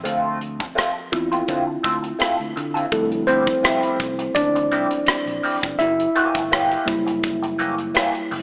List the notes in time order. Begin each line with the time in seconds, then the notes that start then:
Already playing: F3 C4 E5
0.03 D2 A3 C4 F4 A4, closed hi-hat
0.41 closed hi-hat
0.60 muted clean electric guitar stroke, kick, closed hi-hat
0.75 A3 C4 F4 A4, cross-stick, closed hi-hat
1.12 E2 C4 E4 F4, muted clean electric guitar stroke, kick, closed hi-hat
1.32 A3 C4 F4 C5, closed hi-hat
1.48 D3 A3 C4 F4 C5, kick, closed hi-hat
1.68 muted clean electric guitar stroke
1.83 D2 A3 C4 F4 A4, kick, closed hi-hat
2.03 muted clean electric guitar stroke, closed hi-hat
2.19 A3 C4 F4 A4, muted fingered electric bass stroke, cross-stick, closed hi-hat
2.40 D2, closed hi-hat
2.56 D3, muted clean electric guitar stroke, closed hi-hat
2.74 A3 C4 F4 A4, closed hi-hat
2.92 D2 F3 G3 A3 C4 E4 A4, kick, closed hi-hat
3.12 closed hi-hat
3.27 F3 C4 E4 G4 C5, closed hi-hat
3.47 kick, closed hi-hat
3.63 F3 C4 E4 G4, cross-stick, closed hi-hat
3.83 muted fingered electric bass stroke, closed hi-hat
4.00 C2, muted clean electric guitar stroke, kick, closed hi-hat
4.19 muted clean electric guitar stroke, closed hi-hat
4.35 D2 D4 D5, kick, closed hi-hat
4.55 muted clean electric guitar stroke, closed hi-hat
4.71 C2 F3 C4 E4 G4, closed hi-hat
4.91 muted clean electric guitar stroke, closed hi-hat
5.07 muted fingered electric bass stroke, muted clean electric guitar stroke, cross-stick, closed hi-hat
5.26 A#1, closed hi-hat
5.43 F3 C4 E4 G4, open hi-hat
5.62 G1, muted clean electric guitar stroke, kick, closed hi-hat
5.79 F#1 E4 E5, closed hi-hat
6.00 closed hi-hat
6.16 E3 A#3 C#4 G4, closed hi-hat
6.35 G1, kick, closed hi-hat
6.51 E3 A#3 C#4 G4, cross-stick, closed hi-hat
6.72 closed hi-hat
6.86 F#1 G3 A#3 E4, muted clean electric guitar stroke, kick, closed hi-hat
7.07 muted clean electric guitar stroke, closed hi-hat
7.23 kick, closed hi-hat
7.43 muted clean electric guitar stroke, closed hi-hat
7.59 E3 A#3 C#4 G4, closed hi-hat
7.78 muted clean electric guitar stroke, closed hi-hat
7.94 E3 A#3 C#4 G4, cross-stick, closed hi-hat
8.15 closed hi-hat
8.31 F#1, muted clean electric guitar stroke, open hi-hat